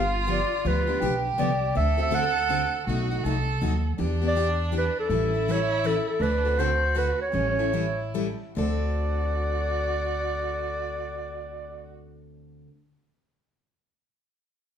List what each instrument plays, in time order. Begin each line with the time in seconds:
Already playing: upright bass G1, violin F4, clarinet F5
0.27 steel-string acoustic guitar D3 F3 B3 D4 G4
0.31 clarinet D5
0.65 upright bass D2, steel-string acoustic guitar D3 F3 B3 D4 G4, clarinet B4
0.87 steel-string acoustic guitar B3 D4 G4
1.00 upright bass B1, steel-string acoustic guitar D3 F3 B3 D4 G4, violin G4
1.38 upright bass C2, steel-string acoustic guitar D3 F3 B3 D4 G4, clarinet D5
1.75 upright bass D2, steel-string acoustic guitar D3 A3 C4 F#4 A4, violin A4, clarinet E5
1.97 steel-string acoustic guitar C4 F#4 A4
2.02 clarinet E5
2.11 steel-string acoustic guitar D3 A3 C4 F#4 A4, clarinet F#5
2.49 steel-string acoustic guitar D3 A3 C4 F#4 A4
2.87 upright bass B1, steel-string acoustic guitar B2 F#3 A3 D#4 F#4, violin F#4
3.11 steel-string acoustic guitar A3 D#4 F#4
3.24 upright bass C2, steel-string acoustic guitar B2 F#3 A3 D#4 F#4, violin A4
3.61 upright bass D#2, steel-string acoustic guitar B2 F#3 A3 D#4 F#4
3.98 upright bass E2, steel-string acoustic guitar E3 B3 D4 G4, violin D4
4.22 steel-string acoustic guitar B3 D4 G4
4.28 clarinet D5
4.35 steel-string acoustic guitar E3 B3 D4 G4
4.72 steel-string acoustic guitar E3 B3 D4 G4
4.78 clarinet B4
5.00 clarinet A4
5.08 upright bass A1, steel-string acoustic guitar E3 G3 C#4 E4 A4, violin E4
5.34 steel-string acoustic guitar C#4 E4 A4
5.48 steel-string acoustic guitar E3 G3 C#4 E4 A4, clarinet C#5
5.84 steel-string acoustic guitar E3 G3 C#4 E4 A4, clarinet A4
6.09 clarinet A4
6.20 upright bass D2, steel-string acoustic guitar D3 A3 C4 F#4 A4, violin D4, clarinet B4
6.45 steel-string acoustic guitar C4 F#4 A4
6.57 steel-string acoustic guitar D3 A3 C4 F#4 A4, violin F#4, clarinet C5
6.95 steel-string acoustic guitar D3 A3 C4 F#4 A4, clarinet B4
7.21 clarinet C#5
7.32 upright bass A1, steel-string acoustic guitar E3 G3 C#4 E4 A4, violin C#4
7.59 steel-string acoustic guitar C#4 E4 A4
7.72 steel-string acoustic guitar E3 G3 C#4 E4 A4, violin E4
8.14 steel-string acoustic guitar E3 G3 C#4 E4 A4
8.55 upright bass D2, steel-string acoustic guitar D3 A3 C4 F#4 A4, violin F#4, clarinet D5